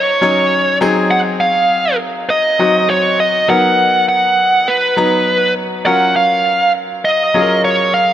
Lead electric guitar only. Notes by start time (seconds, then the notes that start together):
Already playing: C#5
1.11 F#5
1.40 F5
2.30 D#5
2.90 C#5
3.20 D#5
3.50 F#5
4.09 F#5
4.68 B4
5.86 F#5
6.16 F5
7.05 D#5
7.65 C#5
7.94 F5